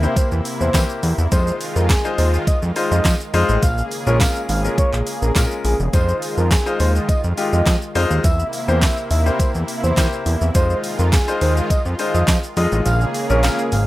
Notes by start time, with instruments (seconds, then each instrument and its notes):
Already playing: analog synth pad C3 A#3 E4
0.03 grand piano A#3 E4 G4 C5, shaker
0.16 analog synth lead C5, kick, closed hi-hat, tambourine, shaker
0.32 analog synth bass E2, shaker
0.45 open hi-hat, tambourine, shaker
0.61 analog synth bass E2, analog synth lead C5, shaker
0.74 analog synth bass E3, grand piano A#3 E4 G4 C5, kick, snare, clap, closed hi-hat, tambourine, shaker
0.90 shaker
1.03 analog synth bass E2, open hi-hat, tambourine, shaker
1.18 analog synth bass E2, shaker
1.32 analog synth bass F2, analog synth pad D#3 G#3 F4, grand piano G#3 D#4 F4 C5, analog synth lead C5, kick, closed hi-hat, tambourine, shaker
1.47 shaker
1.61 open hi-hat, tambourine, shaker
1.76 analog synth bass F2, analog synth lead A#4, shaker
1.89 analog synth lead G#4, kick, snare, clap, closed hi-hat, tambourine, shaker
2.05 grand piano G#3 D#4 F4 C5, shaker
2.18 analog synth bass D#2, analog synth lead C5, open hi-hat, tambourine, shaker
2.34 shaker
2.47 analog synth lead D#5, kick, closed hi-hat, tambourine, shaker
2.62 analog synth bass F2, shaker
2.76 grand piano G#3 D#4 F4 C5, open hi-hat, tambourine, shaker
2.91 analog synth bass F2, analog synth lead D#5, shaker
3.05 analog synth bass F3, kick, snare, clap, closed hi-hat, tambourine, shaker
3.20 shaker
3.34 analog synth bass F2, grand piano G#3 D#4 F4 C5, open hi-hat, shaker
3.49 analog synth bass A1, shaker
3.63 analog synth bass A#1, analog synth pad C#3 A#3 G#4, analog synth lead F5, kick, closed hi-hat, tambourine, shaker
3.78 shaker
3.91 open hi-hat, tambourine, shaker
4.07 analog synth bass A#1, grand piano G#3 C#4 F4 A#4, analog synth lead C#5, shaker
4.20 analog synth lead F5, kick, snare, clap, closed hi-hat, tambourine, shaker
4.36 shaker
4.49 analog synth bass G#1, analog synth lead F5, open hi-hat, tambourine, shaker
4.64 grand piano G#3 C#4 F4 A#4, shaker
4.78 analog synth lead C#5, kick, closed hi-hat, shaker
4.93 analog synth bass A#1, clap, shaker
5.07 open hi-hat, tambourine, shaker
5.22 analog synth bass A#1, analog synth lead A#4, shaker
5.35 analog synth bass A#2, grand piano G#3 C#4 F4 A#4, kick, snare, clap, closed hi-hat, tambourine, shaker
5.51 shaker
5.65 analog synth bass A#1, analog synth lead G#4, open hi-hat, tambourine, shaker
5.80 analog synth bass E1, shaker
5.93 analog synth bass F2, analog synth pad D#3 G#3 F4, grand piano G#3 D#4 F4 C5, analog synth lead C5, kick, closed hi-hat, tambourine, shaker
6.09 shaker
6.22 open hi-hat, tambourine, shaker
6.38 analog synth bass F2, analog synth lead A#4, shaker
6.51 analog synth lead G#4, kick, snare, clap, closed hi-hat, tambourine, shaker
6.66 grand piano G#3 D#4 F4 C5, shaker
6.80 analog synth bass D#2, analog synth lead C5, open hi-hat, tambourine, shaker
6.95 shaker
7.09 analog synth lead D#5, kick, closed hi-hat, tambourine, shaker
7.24 analog synth bass F2, shaker
7.37 grand piano G#3 D#4 F4 G4, open hi-hat, tambourine, shaker
7.53 analog synth bass F2, analog synth lead D#5, shaker
7.66 analog synth bass F3, kick, snare, clap, closed hi-hat, tambourine, shaker
7.82 shaker
7.95 analog synth bass F2, grand piano G#3 D#4 F4 C5, open hi-hat, shaker
8.11 analog synth bass D#2, shaker
8.24 analog synth bass E2, analog synth pad C3 A#3 E4, analog synth lead E5, kick, closed hi-hat, tambourine, shaker
8.39 shaker
8.53 open hi-hat, tambourine, shaker
8.68 analog synth bass E2, grand piano A#3 E4 G4 C5, analog synth lead C5, shaker
8.82 analog synth lead E5, kick, snare, clap, closed hi-hat, tambourine, shaker
8.97 shaker
9.11 analog synth bass D#2, analog synth lead E5, open hi-hat, tambourine, shaker
9.26 grand piano A#3 E4 G4 C5, shaker
9.39 analog synth lead C5, kick, closed hi-hat, tambourine, shaker
9.55 analog synth bass E2, shaker
9.68 open hi-hat, tambourine, shaker
9.84 analog synth bass E2, analog synth lead C5, shaker
9.97 analog synth bass E3, grand piano A#3 E4 G4 C5, kick, snare, clap, closed hi-hat, tambourine, shaker
10.13 shaker
10.26 analog synth bass E2, open hi-hat, tambourine, shaker
10.41 analog synth bass E2, shaker
10.55 analog synth bass F2, analog synth pad D#3 G#3 F4, grand piano G#3 D#4 F4 C5, analog synth lead C5, kick, closed hi-hat, tambourine, shaker
10.70 shaker
10.84 open hi-hat, tambourine, shaker
10.99 analog synth bass F2, analog synth lead A#4, shaker
11.12 analog synth lead G#4, kick, snare, clap, closed hi-hat, tambourine, shaker
11.28 grand piano G#3 D#4 F4 C5, shaker
11.41 analog synth bass D#2, analog synth lead C5, open hi-hat, tambourine, shaker
11.57 shaker
11.70 analog synth lead D#5, kick, closed hi-hat, tambourine, shaker
11.85 analog synth bass F2, shaker
11.99 grand piano G#3 D#4 F4 C5, open hi-hat, tambourine, shaker
12.14 analog synth bass F2, analog synth lead D#5, shaker
12.28 analog synth bass F3, kick, snare, clap, closed hi-hat, tambourine, shaker
12.43 shaker
12.57 analog synth bass F2, grand piano G#3 D#4 F4 D#5, open hi-hat, shaker
12.72 analog synth bass A1, shaker
12.86 analog synth bass A#1, analog synth pad C#3 A#3 G#4, analog synth lead F5, closed hi-hat, tambourine, shaker
13.01 shaker
13.14 open hi-hat, tambourine, shaker
13.30 analog synth bass A#1, grand piano G#3 C#4 F4 A#4, analog synth lead C#5, shaker
13.43 analog synth lead F5, snare, clap, closed hi-hat, tambourine, shaker
13.59 shaker
13.72 analog synth bass G#1, analog synth lead F5, open hi-hat, tambourine, shaker